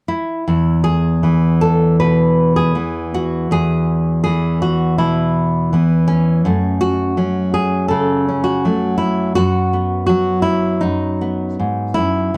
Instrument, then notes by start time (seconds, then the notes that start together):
nylon-string guitar
0.08 E4
0.48 E2 E4
0.84 G#4
1.23 E3 B3
1.61 A4
2.00 B2 B4
2.56 G#4
2.75 E3 B3
3.14 F#4
3.51 E2 G#4
4.24 E3 G#4
4.62 F#4
4.98 B2 E4
5.73 E3 B3
6.08 C#4
6.45 F#2 A3
6.81 F#4
7.17 F#3 C#4
7.54 G#4
7.88 C#3 A4
8.28 C#4
8.44 F#4
8.65 F#3 A3
8.98 E4
9.35 F#2 F#4
9.73 B3
10.06 F#3 F#4
10.42 E4
10.81 F#2 D#4
11.21 B3
11.59 G#2
11.94 F#2 E4